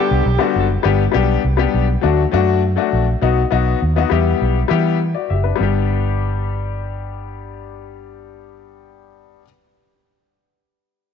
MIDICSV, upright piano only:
0, 0, Header, 1, 2, 480
1, 0, Start_track
1, 0, Key_signature, 1, "major"
1, 0, Tempo, 594059
1, 683, Time_signature, 4, 2, 24, 8
1, 9000, End_track
2, 0, Start_track
2, 0, Title_t, "Upright piano"
2, 0, Program_c, 0, 0
2, 0, Note_on_c, 0, 50, 72
2, 0, Note_on_c, 0, 55, 71
2, 0, Note_on_c, 0, 59, 72
2, 0, Note_on_c, 0, 62, 74
2, 0, Note_on_c, 0, 67, 88
2, 175, Note_off_c, 0, 50, 0
2, 176, Note_off_c, 0, 55, 0
2, 178, Note_off_c, 0, 59, 0
2, 178, Note_off_c, 0, 62, 0
2, 181, Note_off_c, 0, 67, 0
2, 311, Note_on_c, 0, 50, 88
2, 313, Note_on_c, 0, 55, 81
2, 315, Note_on_c, 0, 59, 81
2, 319, Note_on_c, 0, 62, 79
2, 326, Note_on_c, 0, 66, 104
2, 533, Note_off_c, 0, 50, 0
2, 535, Note_off_c, 0, 55, 0
2, 535, Note_off_c, 0, 59, 0
2, 538, Note_off_c, 0, 62, 0
2, 541, Note_off_c, 0, 66, 0
2, 671, Note_on_c, 0, 55, 94
2, 677, Note_on_c, 0, 59, 90
2, 683, Note_on_c, 0, 62, 77
2, 683, Note_on_c, 0, 67, 99
2, 821, Note_off_c, 0, 55, 0
2, 824, Note_off_c, 0, 59, 0
2, 827, Note_off_c, 0, 62, 0
2, 827, Note_off_c, 0, 67, 0
2, 902, Note_on_c, 0, 55, 88
2, 913, Note_on_c, 0, 59, 82
2, 917, Note_on_c, 0, 62, 87
2, 923, Note_on_c, 0, 67, 107
2, 1129, Note_off_c, 0, 55, 0
2, 1134, Note_off_c, 0, 59, 0
2, 1136, Note_off_c, 0, 62, 0
2, 1140, Note_off_c, 0, 67, 0
2, 1269, Note_on_c, 0, 55, 87
2, 1275, Note_on_c, 0, 59, 86
2, 1280, Note_on_c, 0, 62, 79
2, 1286, Note_on_c, 0, 67, 100
2, 1492, Note_off_c, 0, 55, 0
2, 1495, Note_off_c, 0, 59, 0
2, 1497, Note_off_c, 0, 62, 0
2, 1501, Note_off_c, 0, 67, 0
2, 1627, Note_on_c, 0, 54, 93
2, 1637, Note_on_c, 0, 57, 77
2, 1639, Note_on_c, 0, 62, 89
2, 1644, Note_on_c, 0, 66, 96
2, 1779, Note_off_c, 0, 54, 0
2, 1784, Note_off_c, 0, 57, 0
2, 1785, Note_off_c, 0, 62, 0
2, 1788, Note_off_c, 0, 66, 0
2, 1871, Note_on_c, 0, 54, 96
2, 1878, Note_on_c, 0, 57, 89
2, 1884, Note_on_c, 0, 62, 92
2, 1889, Note_on_c, 0, 66, 114
2, 2093, Note_off_c, 0, 54, 0
2, 2097, Note_off_c, 0, 57, 0
2, 2100, Note_off_c, 0, 62, 0
2, 2102, Note_off_c, 0, 66, 0
2, 2230, Note_on_c, 0, 54, 93
2, 2234, Note_on_c, 0, 57, 82
2, 2240, Note_on_c, 0, 62, 83
2, 2245, Note_on_c, 0, 66, 99
2, 2452, Note_off_c, 0, 54, 0
2, 2454, Note_off_c, 0, 57, 0
2, 2458, Note_off_c, 0, 62, 0
2, 2460, Note_off_c, 0, 66, 0
2, 2598, Note_on_c, 0, 54, 88
2, 2603, Note_on_c, 0, 59, 86
2, 2607, Note_on_c, 0, 63, 85
2, 2607, Note_on_c, 0, 66, 99
2, 2744, Note_off_c, 0, 54, 0
2, 2747, Note_off_c, 0, 59, 0
2, 2749, Note_off_c, 0, 63, 0
2, 2749, Note_off_c, 0, 66, 0
2, 2832, Note_on_c, 0, 59, 86
2, 2833, Note_on_c, 0, 54, 93
2, 2841, Note_on_c, 0, 63, 84
2, 2842, Note_on_c, 0, 66, 105
2, 3054, Note_off_c, 0, 54, 0
2, 3054, Note_off_c, 0, 59, 0
2, 3058, Note_off_c, 0, 63, 0
2, 3058, Note_off_c, 0, 66, 0
2, 3198, Note_on_c, 0, 54, 85
2, 3202, Note_on_c, 0, 59, 89
2, 3210, Note_on_c, 0, 63, 81
2, 3218, Note_on_c, 0, 66, 102
2, 3304, Note_off_c, 0, 59, 0
2, 3310, Note_on_c, 0, 55, 87
2, 3316, Note_on_c, 0, 59, 82
2, 3320, Note_off_c, 0, 54, 0
2, 3324, Note_on_c, 0, 64, 80
2, 3324, Note_on_c, 0, 67, 98
2, 3326, Note_off_c, 0, 63, 0
2, 3330, Note_off_c, 0, 66, 0
2, 3700, Note_off_c, 0, 55, 0
2, 3703, Note_off_c, 0, 59, 0
2, 3707, Note_off_c, 0, 64, 0
2, 3707, Note_off_c, 0, 67, 0
2, 3782, Note_on_c, 0, 55, 91
2, 3791, Note_on_c, 0, 59, 83
2, 3791, Note_on_c, 0, 64, 85
2, 3801, Note_on_c, 0, 67, 105
2, 4009, Note_off_c, 0, 55, 0
2, 4013, Note_off_c, 0, 59, 0
2, 4013, Note_off_c, 0, 64, 0
2, 4018, Note_off_c, 0, 67, 0
2, 4158, Note_on_c, 0, 74, 66
2, 4165, Note_on_c, 0, 66, 51
2, 4274, Note_off_c, 0, 74, 0
2, 4278, Note_off_c, 0, 66, 0
2, 4284, Note_on_c, 0, 76, 63
2, 4292, Note_on_c, 0, 67, 57
2, 4393, Note_on_c, 0, 71, 60
2, 4397, Note_off_c, 0, 76, 0
2, 4400, Note_on_c, 0, 62, 53
2, 4401, Note_off_c, 0, 67, 0
2, 4489, Note_on_c, 0, 55, 83
2, 4503, Note_on_c, 0, 59, 72
2, 4508, Note_off_c, 0, 62, 0
2, 4520, Note_on_c, 0, 62, 69
2, 4545, Note_on_c, 0, 67, 86
2, 4625, Note_off_c, 0, 71, 0
2, 7606, Note_off_c, 0, 55, 0
2, 7613, Note_off_c, 0, 59, 0
2, 7621, Note_off_c, 0, 62, 0
2, 7633, Note_off_c, 0, 67, 0
2, 9000, End_track
0, 0, End_of_file